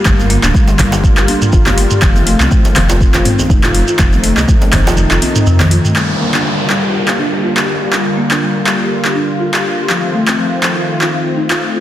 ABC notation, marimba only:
X:1
M:4/4
L:1/16
Q:"Swing 16ths" 1/4=122
K:Gm
V:1 name="Marimba"
G, z B, D G, z G, G z G D z F G z G | F, z A, C F, z F, F z F C z E F z F | F, z A, C F, z F, F z F C z C, E, F A, | G, z B, D G, z G, G z G D z F G z G |
G, z B, D G, z G, G z G D z F G z G | F, z A, C F, z F, F z F C z E F z F |]